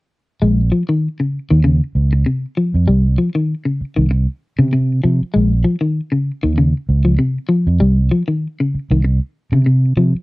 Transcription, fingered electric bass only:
0, 0, Header, 1, 3, 480
1, 0, Start_track
1, 0, Tempo, 616016
1, 327, Time_signature, 4, 2, 24, 8
1, 7969, End_track
2, 0, Start_track
2, 0, Title_t, "Fingered electric bass"
2, 0, Program_c, 0, 33
2, 331, Note_on_c, 0, 34, 78
2, 545, Note_off_c, 0, 34, 0
2, 1180, Note_on_c, 0, 39, 69
2, 1395, Note_off_c, 0, 39, 0
2, 1521, Note_on_c, 0, 37, 61
2, 1739, Note_off_c, 0, 37, 0
2, 2138, Note_on_c, 0, 41, 70
2, 2236, Note_off_c, 0, 41, 0
2, 2243, Note_on_c, 0, 36, 71
2, 2461, Note_off_c, 0, 36, 0
2, 3099, Note_on_c, 0, 36, 67
2, 3314, Note_off_c, 0, 36, 0
2, 3575, Note_on_c, 0, 48, 74
2, 3894, Note_off_c, 0, 48, 0
2, 3932, Note_on_c, 0, 48, 67
2, 4047, Note_off_c, 0, 48, 0
2, 4176, Note_on_c, 0, 34, 79
2, 4388, Note_off_c, 0, 34, 0
2, 5020, Note_on_c, 0, 39, 68
2, 5235, Note_off_c, 0, 39, 0
2, 5366, Note_on_c, 0, 37, 67
2, 5583, Note_off_c, 0, 37, 0
2, 5975, Note_on_c, 0, 41, 77
2, 6075, Note_off_c, 0, 41, 0
2, 6085, Note_on_c, 0, 36, 72
2, 6302, Note_off_c, 0, 36, 0
2, 6940, Note_on_c, 0, 36, 74
2, 7155, Note_off_c, 0, 36, 0
2, 7418, Note_on_c, 0, 48, 72
2, 7735, Note_off_c, 0, 48, 0
2, 7767, Note_on_c, 0, 48, 68
2, 7884, Note_off_c, 0, 48, 0
2, 7969, End_track
3, 0, Start_track
3, 0, Title_t, "Muted fingered electric bass strokes"
3, 2970, Note_on_c, 9, 29, 31
3, 3048, Note_off_c, 9, 29, 0
3, 4065, Note_on_c, 9, 29, 32
3, 4143, Note_off_c, 9, 29, 0
3, 6815, Note_on_c, 9, 29, 31
3, 6893, Note_off_c, 9, 29, 0
3, 7904, Note_on_c, 9, 29, 30
3, 7969, Note_off_c, 9, 29, 0
3, 7969, End_track
0, 0, End_of_file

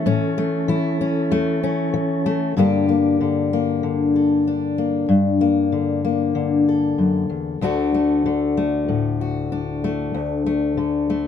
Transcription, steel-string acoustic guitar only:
0, 0, Header, 1, 2, 480
1, 0, Start_track
1, 0, Tempo, 630252
1, 46, Time_signature, 4, 2, 24, 8
1, 8586, End_track
2, 0, Start_track
2, 0, Title_t, "Steel-string acoustic guitar"
2, 0, Program_c, 0, 25
2, 0, Note_on_c, 0, 57, 61
2, 44, Note_on_c, 0, 45, 77
2, 49, Note_on_c, 0, 61, 69
2, 285, Note_off_c, 0, 57, 0
2, 288, Note_on_c, 0, 57, 58
2, 475, Note_off_c, 0, 45, 0
2, 519, Note_on_c, 0, 52, 67
2, 526, Note_on_c, 0, 64, 69
2, 759, Note_off_c, 0, 61, 0
2, 768, Note_on_c, 0, 61, 58
2, 952, Note_off_c, 0, 52, 0
2, 993, Note_off_c, 0, 57, 0
2, 999, Note_on_c, 0, 40, 66
2, 1002, Note_on_c, 0, 57, 64
2, 1236, Note_off_c, 0, 61, 0
2, 1245, Note_on_c, 0, 61, 60
2, 1431, Note_off_c, 0, 40, 0
2, 1475, Note_on_c, 0, 52, 61
2, 1711, Note_off_c, 0, 57, 0
2, 1721, Note_on_c, 0, 57, 58
2, 1909, Note_off_c, 0, 52, 0
2, 1931, Note_off_c, 0, 57, 0
2, 1932, Note_off_c, 0, 64, 0
2, 1933, Note_off_c, 0, 61, 0
2, 1954, Note_on_c, 0, 43, 61
2, 1959, Note_on_c, 0, 50, 45
2, 1964, Note_on_c, 0, 58, 47
2, 1969, Note_on_c, 0, 62, 51
2, 1973, Note_on_c, 0, 67, 58
2, 2195, Note_off_c, 0, 58, 0
2, 2198, Note_on_c, 0, 58, 41
2, 2433, Note_off_c, 0, 50, 0
2, 2442, Note_on_c, 0, 50, 47
2, 2686, Note_off_c, 0, 58, 0
2, 2689, Note_on_c, 0, 58, 45
2, 2908, Note_off_c, 0, 50, 0
2, 2917, Note_on_c, 0, 50, 49
2, 3163, Note_off_c, 0, 67, 0
2, 3166, Note_on_c, 0, 69, 39
2, 3405, Note_off_c, 0, 62, 0
2, 3408, Note_on_c, 0, 62, 46
2, 3632, Note_off_c, 0, 58, 0
2, 3641, Note_on_c, 0, 58, 46
2, 3848, Note_off_c, 0, 43, 0
2, 3850, Note_off_c, 0, 50, 0
2, 3852, Note_off_c, 0, 58, 0
2, 3873, Note_on_c, 0, 43, 64
2, 3896, Note_off_c, 0, 69, 0
2, 4120, Note_on_c, 0, 58, 47
2, 4358, Note_on_c, 0, 50, 48
2, 4595, Note_off_c, 0, 58, 0
2, 4604, Note_on_c, 0, 58, 45
2, 4826, Note_off_c, 0, 50, 0
2, 4835, Note_on_c, 0, 50, 50
2, 5092, Note_on_c, 0, 69, 42
2, 5315, Note_off_c, 0, 43, 0
2, 5318, Note_on_c, 0, 42, 50
2, 5553, Note_off_c, 0, 42, 0
2, 5556, Note_on_c, 0, 40, 50
2, 5579, Note_off_c, 0, 62, 0
2, 5771, Note_off_c, 0, 50, 0
2, 5776, Note_off_c, 0, 58, 0
2, 5795, Note_off_c, 0, 40, 0
2, 5798, Note_on_c, 0, 38, 64
2, 5805, Note_on_c, 0, 50, 52
2, 5810, Note_on_c, 0, 57, 52
2, 5814, Note_on_c, 0, 62, 52
2, 5817, Note_off_c, 0, 69, 0
2, 5820, Note_on_c, 0, 66, 59
2, 6047, Note_off_c, 0, 57, 0
2, 6050, Note_on_c, 0, 57, 48
2, 6285, Note_off_c, 0, 50, 0
2, 6289, Note_on_c, 0, 50, 55
2, 6526, Note_off_c, 0, 57, 0
2, 6529, Note_on_c, 0, 57, 47
2, 6766, Note_on_c, 0, 45, 52
2, 7006, Note_off_c, 0, 66, 0
2, 7016, Note_on_c, 0, 66, 42
2, 7247, Note_off_c, 0, 62, 0
2, 7250, Note_on_c, 0, 62, 48
2, 7492, Note_off_c, 0, 57, 0
2, 7495, Note_on_c, 0, 57, 48
2, 7703, Note_off_c, 0, 66, 0
2, 7716, Note_off_c, 0, 38, 0
2, 7726, Note_on_c, 0, 38, 64
2, 7728, Note_off_c, 0, 45, 0
2, 7966, Note_off_c, 0, 57, 0
2, 7969, Note_on_c, 0, 57, 46
2, 8196, Note_off_c, 0, 50, 0
2, 8205, Note_on_c, 0, 50, 49
2, 8443, Note_off_c, 0, 57, 0
2, 8452, Note_on_c, 0, 57, 47
2, 8586, Note_off_c, 0, 38, 0
2, 8586, Note_off_c, 0, 50, 0
2, 8586, Note_off_c, 0, 57, 0
2, 8586, Note_off_c, 0, 62, 0
2, 8586, End_track
0, 0, End_of_file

